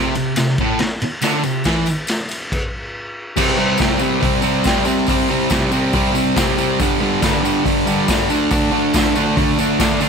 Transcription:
Already playing: distorted electric guitar C3
0.15 distorted electric guitar C3, ride, tambourine
0.36 distorted electric guitar C3, snare, ride, tambourine
0.58 distorted electric guitar A2, kick, ride
0.79 muted distorted electric guitar stroke, snare, ride, tambourine
1.00 muted distorted electric guitar stroke, ride, tambourine
1.22 distorted electric guitar D3, snare, ride, tambourine
1.43 distorted electric guitar C3, ride, tambourine
1.64 distorted electric guitar E3, kick, snare, ride, tambourine
1.86 ride, tambourine
2.07 snare, ride, tambourine
2.29 ride, tambourine
2.52 kick, crash
3.36 distorted electric guitar C3 G3 C4, kick, crash, tambourine
3.57 distorted electric guitar C3 G3 C4, tambourine
3.78 distorted electric guitar C3 G3 C4, kick, snare, open hi-hat, tambourine
3.99 distorted electric guitar C3 G3 C4, tambourine
4.21 distorted electric guitar C3 G3 C4, kick, open hi-hat, tambourine
4.42 distorted electric guitar C3 G3 C4, tambourine
4.64 distorted electric guitar C3 G3 C4, kick, snare, open hi-hat, tambourine
4.85 distorted electric guitar C3 G3 C4, tambourine
5.07 distorted electric guitar C3 G3 C4, kick, open hi-hat, tambourine
5.29 distorted electric guitar C3 G3 C4, tambourine
5.50 distorted electric guitar C3 G3 C4, kick, snare, open hi-hat, tambourine
5.71 distorted electric guitar C3 G3 C4, tambourine
5.93 distorted electric guitar C3 G3 C4, kick, open hi-hat, tambourine
6.14 distorted electric guitar C3 G3 C4, tambourine
6.36 distorted electric guitar C3 G3 C4, kick, snare, open hi-hat, tambourine
6.58 distorted electric guitar C3 G3 C4, tambourine
6.79 distorted electric guitar G2 D3 G3, kick, open hi-hat, tambourine
7.01 distorted electric guitar G2 D3 G3, tambourine
7.22 distorted electric guitar G2 D3 G3, kick, snare, open hi-hat, tambourine
7.43 distorted electric guitar G2 D3 G3, tambourine
7.65 distorted electric guitar G2 D3 G3, kick, open hi-hat, tambourine
7.87 distorted electric guitar G2 D3 G3, tambourine
8.08 distorted electric guitar G2 D3 G3, kick, snare, open hi-hat, tambourine
8.29 distorted electric guitar D3 A3 D4, tambourine
8.51 distorted electric guitar D3 A3 D4, kick, open hi-hat, tambourine
8.71 distorted electric guitar D3 A3 D4, tambourine
8.94 distorted electric guitar D3 A3 D4, kick, snare, open hi-hat, tambourine
9.15 distorted electric guitar D3 A3 D4, tambourine
9.37 distorted electric guitar D3 A3 D4, kick, open hi-hat
9.59 distorted electric guitar D3 A3 D4, tambourine
9.79 distorted electric guitar D3 A3 D4, kick, snare, open hi-hat, tambourine
10.00 distorted electric guitar D3 A3 D4, tambourine

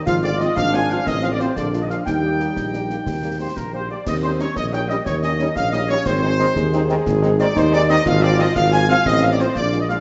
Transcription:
0.06 tuba G#1, euphonium F3, trombone section F4, woodwind section F5, trumpet section F5, concert bass drum, snare, crash
0.22 euphonium D3, french horn section F3 C4 F4, woodwind section D5, trumpet section D5
0.39 euphonium D#3, french horn section F3 C4 F4, woodwind section D#5, trumpet section D#5, snare
0.56 tuba G#1, euphonium F3, trombone section D4, woodwind section F5, trumpet section F5, concert bass drum, snare
0.73 french horn section F3 C4 F4, euphonium G#3, woodwind section G#5, trumpet section G#5, snare
0.90 euphonium F3, french horn section F3 C4 F4, woodwind section F5, trumpet section F5, snare
1.06 tuba A1, euphonium D#3, trombone section C4, woodwind section D#5, trumpet section D#5, concert bass drum, snare
1.22 euphonium F3, french horn section F3 C4 F4, trumpet section F5, woodwind section F5, snare
1.31 euphonium D3, woodwind section D5, trumpet section D5
1.40 euphonium C3, french horn section F3 C4 F4, woodwind section C5, trumpet section C5, snare
1.56 tuba A#1, euphonium D3, trombone section D4, woodwind section D5, trumpet section D5, concert bass drum, snare
1.73 french horn section G#3 A#3 F4, snare
1.82 euphonium D#3, woodwind section D#5, trumpet section D#5
1.89 euphonium F3, french horn section G#3 A#3 F4, woodwind section F5, trumpet section F5, snare
2.05 tuba D#2, euphonium G3, trombone section D#4, trumpet section G5, woodwind section G5, concert bass drum, snare
2.23 french horn section G3 A#3 G4
2.40 french horn section G3 A#3 G4, snare
2.56 tuba A#1, concert bass drum, snare
2.73 french horn section G3 A#3 G4, snare
2.90 french horn section G3 A#3 G4, snare
3.06 tuba D#2, concert bass drum, snare
3.24 french horn section G3 A#3 G4
3.39 french horn section G3 A#3 G4, trumpet section C5, woodwind section C5
3.56 tuba A#1, trumpet section A#4, woodwind section A#4, concert bass drum, snare
3.73 french horn section G3 A#3 G4, woodwind section C5, trumpet section C5
3.90 french horn section G3 A#3 G4, woodwind section D5, trumpet section D5
4.06 tuba D#2, euphonium C4, woodwind section D#5, trumpet section D#5, concert bass drum, snare, crash
4.23 french horn section G3 C#4 D#4, woodwind section C5, trumpet section C5
4.39 french horn section G3 C#4 D#4, trombone section G3 C#4, trumpet section C#5, woodwind section C#5, snare
4.55 tuba A#1, euphonium A#3, trumpet section D#5, woodwind section D#5, concert bass drum, snare
4.73 french horn section G3 C#4 D#4, woodwind section G5, trumpet section G5, snare
4.89 french horn section G3 C#4 D#4, trombone section G3 C#4, trumpet section D#5, woodwind section D#5, snare
5.06 tuba D#2, woodwind section C#5, trumpet section C#5, concert bass drum, snare
5.22 french horn section G3 C#4 D#4, trumpet section D#5, woodwind section D#5, snare
5.39 trombone section G3 C#4, french horn section G3 C#4 D#4, snare
5.55 tuba A#1, euphonium C#4, woodwind section F5, trumpet section F5, concert bass drum, snare
5.72 french horn section G3 C#4 D#4, woodwind section D#5, trumpet section D#5, snare
5.89 trombone section G3 C#4, french horn section G3 C#4 D#4, woodwind section C#5, trumpet section C#5, snare
6.06 tuba G#1, euphonium C4, trumpet section C5, woodwind section C5, concert bass drum, snare, crash
6.23 french horn section G#3 C4 D#4
6.39 trombone section D#3 C4, french horn section G#3 C4 D#4, snare
6.55 tuba D#2, euphonium G#4, concert bass drum, snare
6.73 french horn section G#3 C4 D#4, snare
6.89 trombone section D#3 C4, french horn section G#3 C4 D#4, snare
7.06 tuba G#1, concert bass drum, snare
7.23 french horn section G#3 C4 D#4, snare
7.39 trombone section D#3 C4, french horn section G#3 C4 D#4, trumpet section D5, woodwind section D5, snare
7.56 tuba D#2, euphonium D#4, woodwind section C5, trumpet section C5, concert bass drum, snare
7.72 french horn section G#3 C4 D#4, trumpet section D5, woodwind section D5, snare
7.89 trombone section D#3 C4, french horn section G#3 C4 D#4, trumpet section D#5, woodwind section D#5, snare
8.05 tuba G#1, euphonium F4, trumpet section F5, woodwind section F5, concert bass drum, snare, crash
8.22 french horn section F3 C4 F4, trumpet section D5, woodwind section D5
8.38 trombone section F3 C4, french horn section F3 C4 F4, trumpet section D#5, woodwind section D#5, snare
8.55 tuba G#1, trumpet section F5, woodwind section F5, concert bass drum, snare
8.72 french horn section F3 C4 F4, trumpet section G#5, woodwind section G#5, snare
8.88 french horn section F3 C4 F4, trombone section F3 C4, trumpet section F5, woodwind section F5, snare
9.06 tuba A1, euphonium C4, trumpet section D#5, woodwind section D#5, concert bass drum, snare
9.22 french horn section F3 C4 F4, woodwind section F5, trumpet section F5, snare
9.32 woodwind section D5, trumpet section D5
9.38 french horn section F3 C4 F4, trombone section F3 C4, trumpet section C5, woodwind section C5, snare
9.55 tuba A#1, euphonium D4, woodwind section D5, trumpet section D5, concert bass drum, snare
9.72 french horn section G#3 A#3 F4, snare
9.81 trumpet section D#5, woodwind section D#5
9.89 trombone section G#3 A#3, french horn section G#3 A#3 F4, woodwind section F5, trumpet section F5, snare

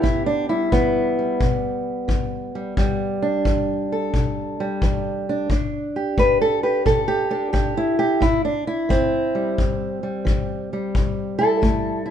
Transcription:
Already playing: steel-string acoustic guitar B3 G4
0.02 steel-string acoustic guitar E2 E4, kick
0.26 steel-string acoustic guitar D4
0.49 steel-string acoustic guitar G3 E4
0.72 steel-string acoustic guitar E3 B3, kick
1.19 steel-string acoustic guitar G3
1.41 steel-string acoustic guitar B2, kick
2.08 steel-string acoustic guitar E3, kick
2.55 steel-string acoustic guitar G3
2.77 steel-string acoustic guitar E2 G3, kick
3.22 steel-string acoustic guitar D4
3.45 steel-string acoustic guitar E3, kick
3.92 steel-string acoustic guitar A4
4.14 steel-string acoustic guitar B2, kick
4.60 steel-string acoustic guitar G3
4.82 steel-string acoustic guitar E3, kick
5.29 steel-string acoustic guitar D4
5.50 steel-string acoustic guitar E3 D4, kick
5.96 steel-string acoustic guitar G4
6.18 steel-string acoustic guitar B3 B4, kick
6.41 steel-string acoustic guitar A4
6.63 steel-string acoustic guitar G4 B4
6.85 steel-string acoustic guitar B2 A4, kick
7.08 steel-string acoustic guitar G4
7.30 steel-string acoustic guitar D4 A4
7.53 steel-string acoustic guitar B3 G4, kick
7.77 steel-string acoustic guitar E4
7.99 steel-string acoustic guitar G4
8.20 steel-string acoustic guitar A2 E4, kick
8.45 steel-string acoustic guitar D4
8.67 steel-string acoustic guitar E4
8.89 steel-string acoustic guitar E3 C4, kick
9.35 steel-string acoustic guitar G3
9.58 steel-string acoustic guitar E2, kick
10.03 steel-string acoustic guitar G3
10.25 steel-string acoustic guitar E3, kick
10.73 steel-string acoustic guitar G3
10.95 steel-string acoustic guitar A2, kick
11.39 steel-string acoustic guitar E4 A4
11.62 steel-string acoustic guitar A3, kick
12.06 steel-string acoustic guitar E4

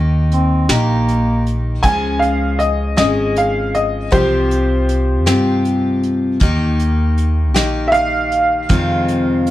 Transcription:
Already playing: upright bass D#2, steel-string acoustic guitar D#3 A#3 D#4 G4
0.31 bass clarinet C4, closed hi-hat
0.69 upright bass A#1, steel-string acoustic guitar D#3 A#3 D#4 G4, bass clarinet A#3, snare, closed hi-hat
1.09 closed hi-hat
1.46 closed hi-hat
1.83 upright bass C#2, steel-string acoustic guitar C#3 F3 G#3 C#4 G#4, upright piano G#5, kick, closed hi-hat
2.19 upright piano F5, closed hi-hat
2.59 upright piano D#5, closed hi-hat
2.97 upright bass G#1, steel-string acoustic guitar C#3 F3 G#3 C#4 G#4, upright piano D#5, snare, closed hi-hat
3.36 upright piano F5, closed hi-hat
3.75 upright piano D#5, closed hi-hat
4.11 upright bass C2, steel-string acoustic guitar C3 F3 C4 F4 G4, upright piano G4 C5, kick, closed hi-hat
4.51 closed hi-hat
4.89 closed hi-hat
5.26 upright bass G2, steel-string acoustic guitar C3 F3 C4 F4 G4, snare, closed hi-hat
5.65 closed hi-hat
6.03 closed hi-hat
6.40 upright bass D#2, steel-string acoustic guitar D#3 A#3 D#4 G4, kick, closed hi-hat
6.79 closed hi-hat
7.18 closed hi-hat
7.54 upright bass A#1, steel-string acoustic guitar D#3 A#3 D#4 G4, snare, closed hi-hat
7.88 upright piano E5
7.92 upright piano F5, closed hi-hat
8.32 closed hi-hat
8.69 steel-string acoustic guitar F2 C3 D#3 G#3 C4 F4, upright bass F2, kick, closed hi-hat
9.08 closed hi-hat
9.47 closed hi-hat

